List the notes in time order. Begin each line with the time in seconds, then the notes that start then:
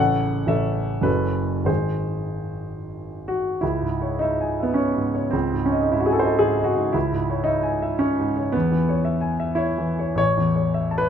Already playing: A1 C#3 C#4 A4 F#5
0.46 A1 C#3 C#4 A4 E5
1.01 F#1 F#3 C#4 A4 B4
1.64 G#1 D#3 G#3 G#4 C5
3.28 F#4
3.61 C#2 E4
3.81 G#2
4.02 C#5
4.19 D#4 E5
4.41 G#5
4.60 B3 E5
4.74 C#4 C#5
4.96 G#2
5.14 C#5
5.31 C#2 C4
5.52 G#2
5.66 C#4
5.72 D#5
5.82 D#4
5.91 G#2 E4
6.00 F#4
6.06 G#4 G#5
6.12 A4
6.19 C5
6.24 A4 D#5
6.39 G#2 G#4
6.60 D#5
6.64 F#4
6.76 G#2
6.92 C#2 E4
7.12 G#2
7.30 C#5
7.44 D#4 E5
7.63 G#5
7.82 E5
7.99 C#4 C#5
8.19 G#2
8.37 C#5
8.52 E2 B3
8.71 E3
8.89 C#5
9.05 E5
9.21 G#5
9.40 E5
9.55 E4 C#5
9.78 E3
9.99 C#5
10.15 A1 C#5
10.37 E2
10.56 C#5
10.74 E5
10.91 A5
10.98 B4